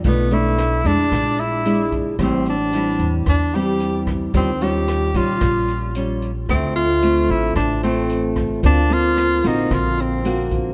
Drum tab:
HH |xxxxxxxx|xxxxxxxx|xxxxxxxx|xxxxxxxx|
SD |--r-r---|r---r--r|--r-r---|r---r--r|
BD |o---o--o|o---o--o|o--oo---|o---o--o|

HH |xxxxxxxx|
SD |--r-r---|
BD |o---o--o|